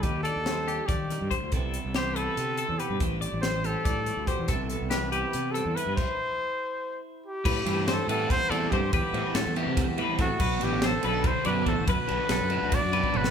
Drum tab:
CC |--------------|--------------|--------------|--------------|
RD |--------------|--------------|--------------|--------------|
HH |x-x-x-x-x-x-x-|x-x-x-x-x-x-x-|x-x-x-x-x-x-x-|x-x-x-x-x-x-x-|
SD |----o-----o---|----o---------|----o-------o-|----o---------|
T2 |--------------|--------------|--------------|--------------|
BD |o-------o---o-|o-------------|o-------o---o-|o-------------|

CC |x-------------|x-------------|--------------|x-------------|
RD |--------------|--x-x-x-x-x-x-|x-x-x-x-x-x-x-|--x-x-x-x-x-x-|
HH |--------------|--------------|--------------|--------------|
SD |--------------|----o---o-----|----o---o---o-|----o---------|
T2 |--------------|--------------|--------------|--------------|
BD |o-------------|o-------o---o-|o-------o---o-|o-------o---o-|

CC |--------------|
RD |x-x-x-x-x-x---|
HH |--------------|
SD |----o--------o|
T2 |------------o-|
BD |o-------o--o--|